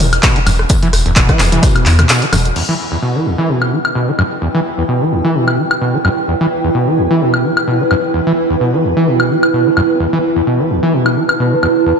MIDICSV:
0, 0, Header, 1, 5, 480
1, 0, Start_track
1, 0, Key_signature, 1, "minor"
1, 0, Tempo, 465116
1, 721, Time_signature, 4, 2, 24, 8
1, 12381, End_track
2, 0, Start_track
2, 0, Title_t, "Ambient pad"
2, 0, Program_c, 0, 92
2, 2640, Note_on_c, 0, 64, 89
2, 2868, Note_on_c, 0, 71, 87
2, 3078, Note_on_c, 0, 79, 91
2, 10884, Note_on_c, 0, 81, 93
2, 11022, Note_off_c, 0, 79, 0
2, 12381, Note_off_c, 0, 64, 0
2, 12381, Note_off_c, 0, 71, 0
2, 12381, Note_off_c, 0, 81, 0
2, 12381, End_track
3, 0, Start_track
3, 0, Title_t, "Acid bass"
3, 0, Program_c, 1, 38
3, 0, Note_on_c, 1, 52, 75
3, 73, Note_off_c, 1, 52, 0
3, 241, Note_on_c, 1, 47, 82
3, 372, Note_on_c, 1, 52, 76
3, 387, Note_off_c, 1, 47, 0
3, 408, Note_off_c, 1, 52, 0
3, 481, Note_on_c, 1, 42, 102
3, 524, Note_off_c, 1, 42, 0
3, 720, Note_on_c, 1, 40, 81
3, 793, Note_off_c, 1, 40, 0
3, 852, Note_on_c, 1, 52, 101
3, 912, Note_off_c, 1, 52, 0
3, 1091, Note_on_c, 1, 40, 77
3, 1152, Note_off_c, 1, 40, 0
3, 1200, Note_on_c, 1, 47, 81
3, 1331, Note_on_c, 1, 52, 78
3, 1347, Note_off_c, 1, 47, 0
3, 1440, Note_on_c, 1, 40, 107
3, 1456, Note_off_c, 1, 52, 0
3, 1549, Note_off_c, 1, 40, 0
3, 1571, Note_on_c, 1, 52, 99
3, 1681, Note_on_c, 1, 47, 80
3, 1696, Note_off_c, 1, 52, 0
3, 1921, Note_on_c, 1, 52, 78
3, 1936, Note_off_c, 1, 47, 0
3, 1993, Note_off_c, 1, 52, 0
3, 2160, Note_on_c, 1, 47, 82
3, 2291, Note_on_c, 1, 52, 77
3, 2306, Note_off_c, 1, 47, 0
3, 2327, Note_off_c, 1, 52, 0
3, 2400, Note_on_c, 1, 42, 102
3, 2444, Note_off_c, 1, 42, 0
3, 2640, Note_on_c, 1, 40, 78
3, 2712, Note_off_c, 1, 40, 0
3, 2771, Note_on_c, 1, 52, 95
3, 2832, Note_off_c, 1, 52, 0
3, 3011, Note_on_c, 1, 40, 75
3, 3071, Note_off_c, 1, 40, 0
3, 3121, Note_on_c, 1, 47, 78
3, 3251, Note_on_c, 1, 52, 73
3, 3267, Note_off_c, 1, 47, 0
3, 3361, Note_on_c, 1, 40, 102
3, 3376, Note_off_c, 1, 52, 0
3, 3469, Note_off_c, 1, 40, 0
3, 3491, Note_on_c, 1, 52, 96
3, 3600, Note_on_c, 1, 47, 78
3, 3616, Note_off_c, 1, 52, 0
3, 3840, Note_on_c, 1, 52, 70
3, 3856, Note_off_c, 1, 47, 0
3, 3913, Note_off_c, 1, 52, 0
3, 4080, Note_on_c, 1, 47, 79
3, 4211, Note_on_c, 1, 52, 73
3, 4226, Note_off_c, 1, 47, 0
3, 4247, Note_off_c, 1, 52, 0
3, 4320, Note_on_c, 1, 42, 98
3, 4364, Note_off_c, 1, 42, 0
3, 4560, Note_on_c, 1, 40, 79
3, 4632, Note_off_c, 1, 40, 0
3, 4691, Note_on_c, 1, 52, 95
3, 4751, Note_off_c, 1, 52, 0
3, 4931, Note_on_c, 1, 40, 75
3, 4991, Note_off_c, 1, 40, 0
3, 5040, Note_on_c, 1, 47, 77
3, 5171, Note_on_c, 1, 52, 71
3, 5187, Note_off_c, 1, 47, 0
3, 5280, Note_on_c, 1, 40, 101
3, 5295, Note_off_c, 1, 52, 0
3, 5388, Note_off_c, 1, 40, 0
3, 5411, Note_on_c, 1, 52, 96
3, 5520, Note_on_c, 1, 47, 74
3, 5535, Note_off_c, 1, 52, 0
3, 5759, Note_on_c, 1, 52, 72
3, 5775, Note_off_c, 1, 47, 0
3, 5832, Note_off_c, 1, 52, 0
3, 6000, Note_on_c, 1, 47, 78
3, 6131, Note_on_c, 1, 52, 74
3, 6147, Note_off_c, 1, 47, 0
3, 6167, Note_off_c, 1, 52, 0
3, 6240, Note_on_c, 1, 42, 97
3, 6284, Note_off_c, 1, 42, 0
3, 6481, Note_on_c, 1, 40, 76
3, 6553, Note_off_c, 1, 40, 0
3, 6612, Note_on_c, 1, 52, 95
3, 6672, Note_off_c, 1, 52, 0
3, 6852, Note_on_c, 1, 40, 76
3, 6912, Note_off_c, 1, 40, 0
3, 6961, Note_on_c, 1, 47, 79
3, 7092, Note_on_c, 1, 52, 73
3, 7107, Note_off_c, 1, 47, 0
3, 7201, Note_on_c, 1, 40, 98
3, 7216, Note_off_c, 1, 52, 0
3, 7309, Note_off_c, 1, 40, 0
3, 7331, Note_on_c, 1, 52, 99
3, 7441, Note_on_c, 1, 47, 77
3, 7456, Note_off_c, 1, 52, 0
3, 7681, Note_on_c, 1, 52, 72
3, 7696, Note_off_c, 1, 47, 0
3, 7753, Note_off_c, 1, 52, 0
3, 7921, Note_on_c, 1, 47, 82
3, 8052, Note_on_c, 1, 52, 72
3, 8068, Note_off_c, 1, 47, 0
3, 8088, Note_off_c, 1, 52, 0
3, 8162, Note_on_c, 1, 42, 96
3, 8205, Note_off_c, 1, 42, 0
3, 8401, Note_on_c, 1, 40, 74
3, 8473, Note_off_c, 1, 40, 0
3, 8532, Note_on_c, 1, 52, 96
3, 8592, Note_off_c, 1, 52, 0
3, 8772, Note_on_c, 1, 40, 77
3, 8832, Note_off_c, 1, 40, 0
3, 8881, Note_on_c, 1, 47, 77
3, 9012, Note_on_c, 1, 52, 72
3, 9028, Note_off_c, 1, 47, 0
3, 9121, Note_on_c, 1, 40, 96
3, 9137, Note_off_c, 1, 52, 0
3, 9229, Note_off_c, 1, 40, 0
3, 9252, Note_on_c, 1, 52, 98
3, 9361, Note_on_c, 1, 47, 77
3, 9376, Note_off_c, 1, 52, 0
3, 9601, Note_on_c, 1, 52, 74
3, 9617, Note_off_c, 1, 47, 0
3, 9673, Note_off_c, 1, 52, 0
3, 9841, Note_on_c, 1, 47, 81
3, 9972, Note_on_c, 1, 52, 75
3, 9988, Note_off_c, 1, 47, 0
3, 10008, Note_off_c, 1, 52, 0
3, 10081, Note_on_c, 1, 42, 95
3, 10124, Note_off_c, 1, 42, 0
3, 10321, Note_on_c, 1, 40, 79
3, 10393, Note_off_c, 1, 40, 0
3, 10452, Note_on_c, 1, 52, 95
3, 10512, Note_off_c, 1, 52, 0
3, 10693, Note_on_c, 1, 40, 75
3, 10753, Note_off_c, 1, 40, 0
3, 10802, Note_on_c, 1, 47, 78
3, 10933, Note_on_c, 1, 52, 74
3, 10948, Note_off_c, 1, 47, 0
3, 11042, Note_on_c, 1, 40, 100
3, 11057, Note_off_c, 1, 52, 0
3, 11150, Note_off_c, 1, 40, 0
3, 11172, Note_on_c, 1, 52, 98
3, 11282, Note_on_c, 1, 47, 77
3, 11297, Note_off_c, 1, 52, 0
3, 11522, Note_on_c, 1, 52, 72
3, 11538, Note_off_c, 1, 47, 0
3, 11594, Note_off_c, 1, 52, 0
3, 11761, Note_on_c, 1, 47, 78
3, 11893, Note_on_c, 1, 52, 75
3, 11908, Note_off_c, 1, 47, 0
3, 11928, Note_off_c, 1, 52, 0
3, 12001, Note_on_c, 1, 40, 74
3, 12044, Note_off_c, 1, 40, 0
3, 12241, Note_on_c, 1, 40, 76
3, 12313, Note_off_c, 1, 40, 0
3, 12381, End_track
4, 0, Start_track
4, 0, Title_t, "Analog synth bass"
4, 0, Program_c, 2, 38
4, 1, Note_on_c, 2, 28, 80
4, 194, Note_off_c, 2, 28, 0
4, 481, Note_on_c, 2, 28, 102
4, 674, Note_off_c, 2, 28, 0
4, 961, Note_on_c, 2, 28, 99
4, 1064, Note_off_c, 2, 28, 0
4, 1092, Note_on_c, 2, 28, 96
4, 1276, Note_off_c, 2, 28, 0
4, 1441, Note_on_c, 2, 28, 85
4, 1634, Note_off_c, 2, 28, 0
4, 1921, Note_on_c, 2, 40, 97
4, 2115, Note_off_c, 2, 40, 0
4, 2401, Note_on_c, 2, 28, 98
4, 2595, Note_off_c, 2, 28, 0
4, 12381, End_track
5, 0, Start_track
5, 0, Title_t, "Drums"
5, 1, Note_on_c, 9, 46, 93
5, 1, Note_on_c, 9, 47, 88
5, 11, Note_on_c, 9, 54, 70
5, 104, Note_off_c, 9, 46, 0
5, 104, Note_off_c, 9, 47, 0
5, 114, Note_off_c, 9, 54, 0
5, 132, Note_on_c, 9, 42, 55
5, 132, Note_on_c, 9, 76, 80
5, 235, Note_off_c, 9, 42, 0
5, 235, Note_off_c, 9, 76, 0
5, 236, Note_on_c, 9, 39, 114
5, 238, Note_on_c, 9, 38, 111
5, 239, Note_on_c, 9, 54, 90
5, 240, Note_on_c, 9, 37, 58
5, 240, Note_on_c, 9, 42, 78
5, 241, Note_on_c, 9, 36, 114
5, 340, Note_off_c, 9, 39, 0
5, 341, Note_off_c, 9, 38, 0
5, 342, Note_off_c, 9, 54, 0
5, 344, Note_off_c, 9, 36, 0
5, 344, Note_off_c, 9, 37, 0
5, 344, Note_off_c, 9, 42, 0
5, 371, Note_on_c, 9, 42, 37
5, 474, Note_off_c, 9, 42, 0
5, 480, Note_on_c, 9, 46, 96
5, 480, Note_on_c, 9, 54, 73
5, 480, Note_on_c, 9, 76, 63
5, 583, Note_off_c, 9, 46, 0
5, 583, Note_off_c, 9, 76, 0
5, 584, Note_off_c, 9, 54, 0
5, 612, Note_on_c, 9, 37, 54
5, 714, Note_on_c, 9, 54, 85
5, 715, Note_off_c, 9, 37, 0
5, 720, Note_on_c, 9, 42, 85
5, 721, Note_on_c, 9, 36, 114
5, 817, Note_off_c, 9, 54, 0
5, 824, Note_off_c, 9, 36, 0
5, 824, Note_off_c, 9, 42, 0
5, 852, Note_on_c, 9, 42, 36
5, 955, Note_off_c, 9, 42, 0
5, 961, Note_on_c, 9, 37, 59
5, 961, Note_on_c, 9, 46, 99
5, 962, Note_on_c, 9, 54, 71
5, 1064, Note_off_c, 9, 37, 0
5, 1064, Note_off_c, 9, 46, 0
5, 1065, Note_off_c, 9, 54, 0
5, 1092, Note_on_c, 9, 42, 37
5, 1195, Note_off_c, 9, 42, 0
5, 1196, Note_on_c, 9, 39, 118
5, 1200, Note_on_c, 9, 42, 81
5, 1201, Note_on_c, 9, 36, 110
5, 1201, Note_on_c, 9, 54, 57
5, 1300, Note_off_c, 9, 39, 0
5, 1304, Note_off_c, 9, 36, 0
5, 1304, Note_off_c, 9, 42, 0
5, 1304, Note_off_c, 9, 54, 0
5, 1332, Note_on_c, 9, 36, 59
5, 1332, Note_on_c, 9, 37, 61
5, 1332, Note_on_c, 9, 42, 36
5, 1435, Note_off_c, 9, 36, 0
5, 1435, Note_off_c, 9, 37, 0
5, 1435, Note_off_c, 9, 42, 0
5, 1437, Note_on_c, 9, 39, 62
5, 1440, Note_on_c, 9, 46, 99
5, 1442, Note_on_c, 9, 54, 86
5, 1443, Note_on_c, 9, 38, 100
5, 1540, Note_off_c, 9, 39, 0
5, 1544, Note_off_c, 9, 46, 0
5, 1545, Note_off_c, 9, 54, 0
5, 1546, Note_off_c, 9, 38, 0
5, 1571, Note_on_c, 9, 42, 44
5, 1572, Note_off_c, 9, 42, 0
5, 1572, Note_on_c, 9, 42, 53
5, 1572, Note_on_c, 9, 47, 81
5, 1675, Note_off_c, 9, 42, 0
5, 1675, Note_off_c, 9, 47, 0
5, 1678, Note_on_c, 9, 38, 99
5, 1680, Note_on_c, 9, 36, 116
5, 1681, Note_on_c, 9, 37, 59
5, 1681, Note_on_c, 9, 42, 82
5, 1681, Note_on_c, 9, 54, 74
5, 1781, Note_off_c, 9, 38, 0
5, 1784, Note_off_c, 9, 36, 0
5, 1784, Note_off_c, 9, 37, 0
5, 1784, Note_off_c, 9, 42, 0
5, 1785, Note_off_c, 9, 54, 0
5, 1812, Note_on_c, 9, 42, 39
5, 1812, Note_on_c, 9, 76, 63
5, 1915, Note_off_c, 9, 42, 0
5, 1915, Note_off_c, 9, 76, 0
5, 1917, Note_on_c, 9, 39, 60
5, 1921, Note_on_c, 9, 46, 94
5, 1924, Note_on_c, 9, 54, 69
5, 2020, Note_off_c, 9, 39, 0
5, 2024, Note_off_c, 9, 46, 0
5, 2027, Note_off_c, 9, 54, 0
5, 2052, Note_on_c, 9, 37, 62
5, 2052, Note_on_c, 9, 42, 58
5, 2052, Note_on_c, 9, 47, 101
5, 2052, Note_on_c, 9, 76, 74
5, 2155, Note_off_c, 9, 37, 0
5, 2155, Note_off_c, 9, 42, 0
5, 2155, Note_off_c, 9, 47, 0
5, 2155, Note_off_c, 9, 76, 0
5, 2155, Note_on_c, 9, 54, 90
5, 2157, Note_on_c, 9, 39, 113
5, 2161, Note_on_c, 9, 42, 77
5, 2167, Note_on_c, 9, 38, 104
5, 2258, Note_off_c, 9, 54, 0
5, 2260, Note_off_c, 9, 39, 0
5, 2264, Note_off_c, 9, 42, 0
5, 2270, Note_off_c, 9, 38, 0
5, 2292, Note_on_c, 9, 38, 36
5, 2292, Note_on_c, 9, 42, 38
5, 2395, Note_off_c, 9, 38, 0
5, 2395, Note_off_c, 9, 42, 0
5, 2401, Note_on_c, 9, 37, 61
5, 2401, Note_on_c, 9, 46, 99
5, 2401, Note_on_c, 9, 47, 96
5, 2401, Note_on_c, 9, 76, 62
5, 2411, Note_on_c, 9, 54, 67
5, 2504, Note_off_c, 9, 37, 0
5, 2504, Note_off_c, 9, 46, 0
5, 2504, Note_off_c, 9, 47, 0
5, 2504, Note_off_c, 9, 76, 0
5, 2514, Note_off_c, 9, 54, 0
5, 2532, Note_on_c, 9, 42, 38
5, 2636, Note_off_c, 9, 42, 0
5, 2641, Note_on_c, 9, 49, 80
5, 2744, Note_off_c, 9, 49, 0
5, 3732, Note_on_c, 9, 76, 59
5, 3835, Note_off_c, 9, 76, 0
5, 3972, Note_on_c, 9, 76, 71
5, 4075, Note_off_c, 9, 76, 0
5, 4321, Note_on_c, 9, 76, 57
5, 4424, Note_off_c, 9, 76, 0
5, 5652, Note_on_c, 9, 76, 61
5, 5755, Note_off_c, 9, 76, 0
5, 5892, Note_on_c, 9, 76, 75
5, 5995, Note_off_c, 9, 76, 0
5, 6241, Note_on_c, 9, 76, 60
5, 6344, Note_off_c, 9, 76, 0
5, 7572, Note_on_c, 9, 76, 62
5, 7675, Note_off_c, 9, 76, 0
5, 7812, Note_on_c, 9, 76, 79
5, 7915, Note_off_c, 9, 76, 0
5, 8161, Note_on_c, 9, 76, 62
5, 8264, Note_off_c, 9, 76, 0
5, 9492, Note_on_c, 9, 76, 66
5, 9595, Note_off_c, 9, 76, 0
5, 9732, Note_on_c, 9, 76, 77
5, 9836, Note_off_c, 9, 76, 0
5, 10081, Note_on_c, 9, 76, 62
5, 10185, Note_off_c, 9, 76, 0
5, 11412, Note_on_c, 9, 76, 65
5, 11516, Note_off_c, 9, 76, 0
5, 11652, Note_on_c, 9, 76, 79
5, 11756, Note_off_c, 9, 76, 0
5, 12002, Note_on_c, 9, 76, 61
5, 12105, Note_off_c, 9, 76, 0
5, 12381, End_track
0, 0, End_of_file